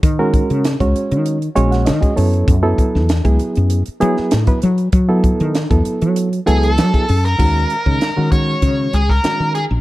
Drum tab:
CC |----------------|----------------|----------------|x---------------|
HH |x-xxxxxxxxxxxxox|x-x-xxxxxxx-xxxx|x-xxxxxxxxxxxxox|--x-x-x-x-x-x-x-|
SD |----o------oo---|---oo------oo---|----o-------o--o|----o------oo---|
BD |o-o--o-------o--|o-o--o-------o--|o-o--o-------o--|o--o--o-o--o----|